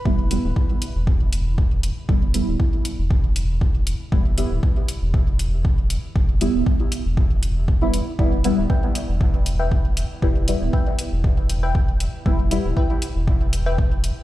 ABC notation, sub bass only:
X:1
M:4/4
L:1/16
Q:1/4=118
K:Em
V:1 name="Sub bass" clef=bass
E,,,3 D,,, z3 E,,,8 z | E,,,3 D,,, z3 E,,,8 z | E,,,3 D,,, z3 E,,,8 z | E,,,3 D,,, z3 E,,,8 z |
E,,,3 D,,, z3 E,,,8 z | E,,,3 D,,, z3 E,,,8 z | E,,,3 D,,, z3 E,,,8 z |]